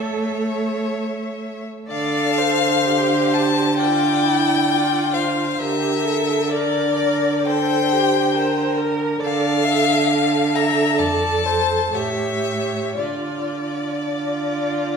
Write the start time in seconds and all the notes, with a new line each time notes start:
Already playing: A3 A4 C#5 E5
1.88 D3 A4 D5 F5
2.38 C5
2.85 G4
3.33 A5
3.78 F4 D5 G5
4.23 E4
4.69 F4 D5
5.13 C5 F5
5.59 D3 G4 A#4 E5
6.05 A4
6.50 A#4 D5
6.98 A#4
7.47 A4 C5 G5
7.92 G4
8.35 A#4 C5
8.78 A#4
9.20 D3 A4 D5 F5
9.64 E5
10.08 A4 F5
10.55 E5 A#5
10.98 F2 D5 A5
11.46 C5
11.92 A2 G4 C#5 E5
12.95 D3 F4 D5
14.04 F4